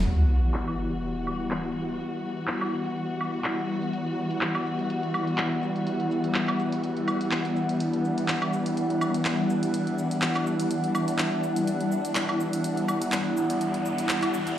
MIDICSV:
0, 0, Header, 1, 6, 480
1, 0, Start_track
1, 0, Key_signature, 1, "minor"
1, 0, Tempo, 483871
1, 62, Time_signature, 4, 2, 24, 8
1, 14469, End_track
2, 0, Start_track
2, 0, Title_t, "Analog synth pad"
2, 0, Program_c, 0, 89
2, 62, Note_on_c, 0, 64, 80
2, 993, Note_on_c, 0, 55, 83
2, 1388, Note_on_c, 0, 78, 79
2, 14469, Note_off_c, 0, 55, 0
2, 14469, Note_off_c, 0, 64, 0
2, 14469, Note_off_c, 0, 78, 0
2, 14469, End_track
3, 0, Start_track
3, 0, Title_t, "String section"
3, 0, Program_c, 1, 48
3, 62, Note_on_c, 1, 52, 74
3, 62, Note_on_c, 1, 55, 67
3, 62, Note_on_c, 1, 59, 70
3, 62, Note_on_c, 1, 66, 81
3, 7728, Note_off_c, 1, 66, 0
3, 7742, Note_on_c, 1, 62, 81
3, 14469, Note_off_c, 1, 52, 0
3, 14469, Note_off_c, 1, 55, 0
3, 14469, Note_off_c, 1, 59, 0
3, 14469, Note_off_c, 1, 62, 0
3, 14469, End_track
4, 0, Start_track
4, 0, Title_t, "Riser"
4, 0, Program_c, 2, 103
4, 11581, Note_on_c, 2, 60, 72
4, 14469, Note_off_c, 2, 60, 0
4, 14469, End_track
5, 0, Start_track
5, 0, Title_t, "Sub drop"
5, 0, Program_c, 3, 103
5, 61, Note_on_c, 3, 60, 67
5, 1981, Note_off_c, 3, 60, 0
5, 14469, End_track
6, 0, Start_track
6, 0, Title_t, "Drums"
6, 61, Note_on_c, 9, 42, 65
6, 63, Note_on_c, 9, 82, 31
6, 160, Note_off_c, 9, 42, 0
6, 162, Note_off_c, 9, 82, 0
6, 303, Note_on_c, 9, 82, 71
6, 402, Note_off_c, 9, 82, 0
6, 431, Note_on_c, 9, 42, 50
6, 530, Note_off_c, 9, 42, 0
6, 535, Note_on_c, 9, 39, 116
6, 541, Note_on_c, 9, 42, 66
6, 634, Note_off_c, 9, 39, 0
6, 640, Note_off_c, 9, 42, 0
6, 671, Note_on_c, 9, 76, 70
6, 770, Note_off_c, 9, 76, 0
6, 911, Note_on_c, 9, 42, 53
6, 913, Note_on_c, 9, 82, 42
6, 1010, Note_off_c, 9, 42, 0
6, 1012, Note_off_c, 9, 82, 0
6, 1021, Note_on_c, 9, 42, 65
6, 1120, Note_off_c, 9, 42, 0
6, 1260, Note_on_c, 9, 76, 71
6, 1262, Note_on_c, 9, 82, 73
6, 1359, Note_off_c, 9, 76, 0
6, 1361, Note_off_c, 9, 82, 0
6, 1390, Note_on_c, 9, 42, 51
6, 1489, Note_off_c, 9, 42, 0
6, 1495, Note_on_c, 9, 39, 118
6, 1501, Note_on_c, 9, 42, 64
6, 1594, Note_off_c, 9, 39, 0
6, 1600, Note_off_c, 9, 42, 0
6, 1743, Note_on_c, 9, 82, 73
6, 1842, Note_off_c, 9, 82, 0
6, 1871, Note_on_c, 9, 42, 52
6, 1970, Note_off_c, 9, 42, 0
6, 1981, Note_on_c, 9, 42, 63
6, 2080, Note_off_c, 9, 42, 0
6, 2111, Note_on_c, 9, 42, 35
6, 2210, Note_off_c, 9, 42, 0
6, 2351, Note_on_c, 9, 42, 51
6, 2352, Note_on_c, 9, 82, 41
6, 2450, Note_off_c, 9, 42, 0
6, 2452, Note_off_c, 9, 82, 0
6, 2455, Note_on_c, 9, 39, 117
6, 2461, Note_on_c, 9, 42, 64
6, 2554, Note_off_c, 9, 39, 0
6, 2560, Note_off_c, 9, 42, 0
6, 2585, Note_on_c, 9, 39, 36
6, 2591, Note_on_c, 9, 76, 73
6, 2684, Note_off_c, 9, 39, 0
6, 2690, Note_off_c, 9, 76, 0
6, 2704, Note_on_c, 9, 82, 72
6, 2803, Note_off_c, 9, 82, 0
6, 2832, Note_on_c, 9, 42, 50
6, 2834, Note_on_c, 9, 82, 40
6, 2931, Note_off_c, 9, 42, 0
6, 2933, Note_off_c, 9, 82, 0
6, 2941, Note_on_c, 9, 42, 63
6, 2943, Note_on_c, 9, 82, 31
6, 3041, Note_off_c, 9, 42, 0
6, 3042, Note_off_c, 9, 82, 0
6, 3071, Note_on_c, 9, 42, 34
6, 3170, Note_off_c, 9, 42, 0
6, 3181, Note_on_c, 9, 76, 73
6, 3183, Note_on_c, 9, 82, 72
6, 3280, Note_off_c, 9, 76, 0
6, 3282, Note_off_c, 9, 82, 0
6, 3311, Note_on_c, 9, 42, 51
6, 3313, Note_on_c, 9, 82, 41
6, 3410, Note_off_c, 9, 42, 0
6, 3412, Note_off_c, 9, 82, 0
6, 3415, Note_on_c, 9, 39, 113
6, 3421, Note_on_c, 9, 42, 65
6, 3423, Note_on_c, 9, 82, 30
6, 3514, Note_off_c, 9, 39, 0
6, 3520, Note_off_c, 9, 42, 0
6, 3522, Note_off_c, 9, 82, 0
6, 3663, Note_on_c, 9, 82, 72
6, 3762, Note_off_c, 9, 82, 0
6, 3792, Note_on_c, 9, 42, 51
6, 3793, Note_on_c, 9, 82, 43
6, 3891, Note_off_c, 9, 42, 0
6, 3893, Note_off_c, 9, 82, 0
6, 3902, Note_on_c, 9, 42, 60
6, 3903, Note_on_c, 9, 82, 30
6, 4001, Note_off_c, 9, 42, 0
6, 4003, Note_off_c, 9, 82, 0
6, 4032, Note_on_c, 9, 42, 34
6, 4131, Note_off_c, 9, 42, 0
6, 4144, Note_on_c, 9, 82, 67
6, 4243, Note_off_c, 9, 82, 0
6, 4272, Note_on_c, 9, 42, 48
6, 4274, Note_on_c, 9, 82, 41
6, 4372, Note_off_c, 9, 42, 0
6, 4373, Note_off_c, 9, 82, 0
6, 4376, Note_on_c, 9, 39, 114
6, 4382, Note_on_c, 9, 42, 62
6, 4475, Note_off_c, 9, 39, 0
6, 4481, Note_off_c, 9, 42, 0
6, 4512, Note_on_c, 9, 76, 74
6, 4611, Note_off_c, 9, 76, 0
6, 4623, Note_on_c, 9, 82, 70
6, 4722, Note_off_c, 9, 82, 0
6, 4752, Note_on_c, 9, 42, 50
6, 4754, Note_on_c, 9, 82, 41
6, 4851, Note_off_c, 9, 42, 0
6, 4853, Note_off_c, 9, 82, 0
6, 4861, Note_on_c, 9, 42, 60
6, 4863, Note_on_c, 9, 82, 30
6, 4960, Note_off_c, 9, 42, 0
6, 4962, Note_off_c, 9, 82, 0
6, 4991, Note_on_c, 9, 42, 34
6, 5091, Note_off_c, 9, 42, 0
6, 5101, Note_on_c, 9, 76, 78
6, 5103, Note_on_c, 9, 82, 73
6, 5200, Note_off_c, 9, 76, 0
6, 5202, Note_off_c, 9, 82, 0
6, 5231, Note_on_c, 9, 42, 47
6, 5233, Note_on_c, 9, 82, 41
6, 5330, Note_off_c, 9, 42, 0
6, 5332, Note_off_c, 9, 82, 0
6, 5335, Note_on_c, 9, 39, 116
6, 5341, Note_on_c, 9, 42, 60
6, 5435, Note_off_c, 9, 39, 0
6, 5440, Note_off_c, 9, 42, 0
6, 5583, Note_on_c, 9, 82, 70
6, 5682, Note_off_c, 9, 82, 0
6, 5711, Note_on_c, 9, 42, 49
6, 5713, Note_on_c, 9, 82, 41
6, 5811, Note_off_c, 9, 42, 0
6, 5812, Note_off_c, 9, 82, 0
6, 5820, Note_on_c, 9, 42, 59
6, 5822, Note_on_c, 9, 82, 30
6, 5920, Note_off_c, 9, 42, 0
6, 5921, Note_off_c, 9, 82, 0
6, 5950, Note_on_c, 9, 42, 33
6, 6050, Note_off_c, 9, 42, 0
6, 6062, Note_on_c, 9, 82, 70
6, 6161, Note_off_c, 9, 82, 0
6, 6190, Note_on_c, 9, 42, 46
6, 6192, Note_on_c, 9, 82, 41
6, 6289, Note_off_c, 9, 42, 0
6, 6291, Note_off_c, 9, 82, 0
6, 6294, Note_on_c, 9, 39, 112
6, 6300, Note_on_c, 9, 42, 58
6, 6302, Note_on_c, 9, 82, 31
6, 6393, Note_off_c, 9, 39, 0
6, 6399, Note_off_c, 9, 42, 0
6, 6401, Note_off_c, 9, 82, 0
6, 6424, Note_on_c, 9, 39, 34
6, 6430, Note_on_c, 9, 76, 81
6, 6523, Note_off_c, 9, 39, 0
6, 6529, Note_off_c, 9, 76, 0
6, 6542, Note_on_c, 9, 82, 70
6, 6641, Note_off_c, 9, 82, 0
6, 6671, Note_on_c, 9, 42, 46
6, 6672, Note_on_c, 9, 82, 43
6, 6770, Note_off_c, 9, 42, 0
6, 6772, Note_off_c, 9, 82, 0
6, 6781, Note_on_c, 9, 42, 59
6, 6783, Note_on_c, 9, 82, 30
6, 6880, Note_off_c, 9, 42, 0
6, 6882, Note_off_c, 9, 82, 0
6, 6911, Note_on_c, 9, 42, 32
6, 7010, Note_off_c, 9, 42, 0
6, 7020, Note_on_c, 9, 76, 79
6, 7022, Note_on_c, 9, 82, 71
6, 7119, Note_off_c, 9, 76, 0
6, 7121, Note_off_c, 9, 82, 0
6, 7151, Note_on_c, 9, 42, 49
6, 7153, Note_on_c, 9, 82, 43
6, 7250, Note_off_c, 9, 42, 0
6, 7252, Note_off_c, 9, 82, 0
6, 7255, Note_on_c, 9, 39, 110
6, 7261, Note_on_c, 9, 42, 60
6, 7263, Note_on_c, 9, 82, 31
6, 7355, Note_off_c, 9, 39, 0
6, 7361, Note_off_c, 9, 42, 0
6, 7362, Note_off_c, 9, 82, 0
6, 7391, Note_on_c, 9, 42, 34
6, 7490, Note_off_c, 9, 42, 0
6, 7502, Note_on_c, 9, 82, 72
6, 7602, Note_off_c, 9, 82, 0
6, 7631, Note_on_c, 9, 42, 47
6, 7632, Note_on_c, 9, 82, 41
6, 7730, Note_off_c, 9, 42, 0
6, 7732, Note_off_c, 9, 82, 0
6, 7741, Note_on_c, 9, 42, 60
6, 7743, Note_on_c, 9, 82, 33
6, 7840, Note_off_c, 9, 42, 0
6, 7842, Note_off_c, 9, 82, 0
6, 7871, Note_on_c, 9, 42, 34
6, 7970, Note_off_c, 9, 42, 0
6, 7983, Note_on_c, 9, 82, 71
6, 8082, Note_off_c, 9, 82, 0
6, 8112, Note_on_c, 9, 42, 47
6, 8114, Note_on_c, 9, 82, 42
6, 8211, Note_off_c, 9, 42, 0
6, 8213, Note_off_c, 9, 82, 0
6, 8217, Note_on_c, 9, 39, 107
6, 8222, Note_on_c, 9, 42, 59
6, 8224, Note_on_c, 9, 82, 32
6, 8316, Note_off_c, 9, 39, 0
6, 8322, Note_off_c, 9, 42, 0
6, 8323, Note_off_c, 9, 82, 0
6, 8352, Note_on_c, 9, 76, 81
6, 8451, Note_off_c, 9, 76, 0
6, 8463, Note_on_c, 9, 82, 75
6, 8562, Note_off_c, 9, 82, 0
6, 8591, Note_on_c, 9, 42, 47
6, 8593, Note_on_c, 9, 82, 43
6, 8690, Note_off_c, 9, 42, 0
6, 8692, Note_off_c, 9, 82, 0
6, 8702, Note_on_c, 9, 42, 60
6, 8703, Note_on_c, 9, 82, 31
6, 8801, Note_off_c, 9, 42, 0
6, 8803, Note_off_c, 9, 82, 0
6, 8831, Note_on_c, 9, 42, 33
6, 8931, Note_off_c, 9, 42, 0
6, 8941, Note_on_c, 9, 76, 79
6, 8943, Note_on_c, 9, 82, 74
6, 9040, Note_off_c, 9, 76, 0
6, 9042, Note_off_c, 9, 82, 0
6, 9071, Note_on_c, 9, 42, 48
6, 9073, Note_on_c, 9, 82, 42
6, 9171, Note_off_c, 9, 42, 0
6, 9172, Note_off_c, 9, 82, 0
6, 9175, Note_on_c, 9, 39, 108
6, 9181, Note_on_c, 9, 42, 61
6, 9183, Note_on_c, 9, 82, 33
6, 9275, Note_off_c, 9, 39, 0
6, 9281, Note_off_c, 9, 42, 0
6, 9282, Note_off_c, 9, 82, 0
6, 9423, Note_on_c, 9, 82, 77
6, 9522, Note_off_c, 9, 82, 0
6, 9551, Note_on_c, 9, 42, 49
6, 9553, Note_on_c, 9, 82, 44
6, 9650, Note_off_c, 9, 42, 0
6, 9652, Note_off_c, 9, 82, 0
6, 9661, Note_on_c, 9, 42, 61
6, 9663, Note_on_c, 9, 82, 33
6, 9760, Note_off_c, 9, 42, 0
6, 9762, Note_off_c, 9, 82, 0
6, 9791, Note_on_c, 9, 42, 35
6, 9891, Note_off_c, 9, 42, 0
6, 9904, Note_on_c, 9, 82, 74
6, 10003, Note_off_c, 9, 82, 0
6, 10032, Note_on_c, 9, 42, 50
6, 10033, Note_on_c, 9, 82, 44
6, 10131, Note_off_c, 9, 42, 0
6, 10133, Note_off_c, 9, 82, 0
6, 10136, Note_on_c, 9, 39, 109
6, 10142, Note_on_c, 9, 42, 60
6, 10143, Note_on_c, 9, 82, 33
6, 10235, Note_off_c, 9, 39, 0
6, 10241, Note_off_c, 9, 42, 0
6, 10242, Note_off_c, 9, 82, 0
6, 10266, Note_on_c, 9, 39, 33
6, 10272, Note_on_c, 9, 76, 76
6, 10365, Note_off_c, 9, 39, 0
6, 10371, Note_off_c, 9, 76, 0
6, 10383, Note_on_c, 9, 82, 78
6, 10482, Note_off_c, 9, 82, 0
6, 10511, Note_on_c, 9, 42, 52
6, 10513, Note_on_c, 9, 82, 44
6, 10610, Note_off_c, 9, 42, 0
6, 10612, Note_off_c, 9, 82, 0
6, 10621, Note_on_c, 9, 42, 60
6, 10623, Note_on_c, 9, 82, 33
6, 10720, Note_off_c, 9, 42, 0
6, 10722, Note_off_c, 9, 82, 0
6, 10751, Note_on_c, 9, 42, 35
6, 10850, Note_off_c, 9, 42, 0
6, 10860, Note_on_c, 9, 76, 76
6, 10862, Note_on_c, 9, 82, 78
6, 10959, Note_off_c, 9, 76, 0
6, 10961, Note_off_c, 9, 82, 0
6, 10991, Note_on_c, 9, 42, 49
6, 10992, Note_on_c, 9, 82, 46
6, 11090, Note_off_c, 9, 42, 0
6, 11092, Note_off_c, 9, 82, 0
6, 11096, Note_on_c, 9, 39, 108
6, 11101, Note_on_c, 9, 42, 65
6, 11103, Note_on_c, 9, 82, 33
6, 11195, Note_off_c, 9, 39, 0
6, 11201, Note_off_c, 9, 42, 0
6, 11202, Note_off_c, 9, 82, 0
6, 11343, Note_on_c, 9, 82, 76
6, 11442, Note_off_c, 9, 82, 0
6, 11471, Note_on_c, 9, 42, 51
6, 11473, Note_on_c, 9, 82, 47
6, 11571, Note_off_c, 9, 42, 0
6, 11572, Note_off_c, 9, 82, 0
6, 11581, Note_on_c, 9, 42, 66
6, 11583, Note_on_c, 9, 82, 34
6, 11681, Note_off_c, 9, 42, 0
6, 11682, Note_off_c, 9, 82, 0
6, 11711, Note_on_c, 9, 42, 37
6, 11810, Note_off_c, 9, 42, 0
6, 11823, Note_on_c, 9, 82, 77
6, 11922, Note_off_c, 9, 82, 0
6, 11951, Note_on_c, 9, 42, 50
6, 11953, Note_on_c, 9, 82, 45
6, 12051, Note_off_c, 9, 42, 0
6, 12052, Note_off_c, 9, 82, 0
6, 12056, Note_on_c, 9, 39, 110
6, 12061, Note_on_c, 9, 42, 62
6, 12063, Note_on_c, 9, 82, 34
6, 12155, Note_off_c, 9, 39, 0
6, 12161, Note_off_c, 9, 42, 0
6, 12162, Note_off_c, 9, 82, 0
6, 12191, Note_on_c, 9, 76, 71
6, 12290, Note_off_c, 9, 76, 0
6, 12303, Note_on_c, 9, 82, 77
6, 12403, Note_off_c, 9, 82, 0
6, 12432, Note_on_c, 9, 42, 51
6, 12434, Note_on_c, 9, 82, 44
6, 12531, Note_off_c, 9, 42, 0
6, 12533, Note_off_c, 9, 82, 0
6, 12542, Note_on_c, 9, 42, 61
6, 12543, Note_on_c, 9, 82, 34
6, 12641, Note_off_c, 9, 42, 0
6, 12643, Note_off_c, 9, 82, 0
6, 12671, Note_on_c, 9, 42, 36
6, 12771, Note_off_c, 9, 42, 0
6, 12781, Note_on_c, 9, 76, 73
6, 12783, Note_on_c, 9, 82, 79
6, 12880, Note_off_c, 9, 76, 0
6, 12882, Note_off_c, 9, 82, 0
6, 12912, Note_on_c, 9, 42, 52
6, 12913, Note_on_c, 9, 82, 45
6, 13011, Note_off_c, 9, 42, 0
6, 13013, Note_off_c, 9, 82, 0
6, 13016, Note_on_c, 9, 39, 111
6, 13022, Note_on_c, 9, 42, 65
6, 13024, Note_on_c, 9, 82, 34
6, 13115, Note_off_c, 9, 39, 0
6, 13121, Note_off_c, 9, 42, 0
6, 13123, Note_off_c, 9, 82, 0
6, 13263, Note_on_c, 9, 82, 78
6, 13362, Note_off_c, 9, 82, 0
6, 13391, Note_on_c, 9, 42, 53
6, 13393, Note_on_c, 9, 82, 48
6, 13491, Note_off_c, 9, 42, 0
6, 13492, Note_off_c, 9, 82, 0
6, 13501, Note_on_c, 9, 42, 66
6, 13503, Note_on_c, 9, 82, 34
6, 13601, Note_off_c, 9, 42, 0
6, 13602, Note_off_c, 9, 82, 0
6, 13632, Note_on_c, 9, 42, 37
6, 13731, Note_off_c, 9, 42, 0
6, 13744, Note_on_c, 9, 82, 74
6, 13843, Note_off_c, 9, 82, 0
6, 13872, Note_on_c, 9, 42, 53
6, 13874, Note_on_c, 9, 82, 44
6, 13972, Note_off_c, 9, 42, 0
6, 13973, Note_off_c, 9, 82, 0
6, 13976, Note_on_c, 9, 39, 117
6, 13982, Note_on_c, 9, 42, 67
6, 13984, Note_on_c, 9, 82, 34
6, 14075, Note_off_c, 9, 39, 0
6, 14081, Note_off_c, 9, 42, 0
6, 14083, Note_off_c, 9, 82, 0
6, 14107, Note_on_c, 9, 39, 36
6, 14112, Note_on_c, 9, 42, 37
6, 14112, Note_on_c, 9, 76, 71
6, 14206, Note_off_c, 9, 39, 0
6, 14212, Note_off_c, 9, 42, 0
6, 14212, Note_off_c, 9, 76, 0
6, 14224, Note_on_c, 9, 82, 78
6, 14323, Note_off_c, 9, 82, 0
6, 14352, Note_on_c, 9, 42, 53
6, 14354, Note_on_c, 9, 82, 45
6, 14451, Note_off_c, 9, 42, 0
6, 14453, Note_off_c, 9, 82, 0
6, 14469, End_track
0, 0, End_of_file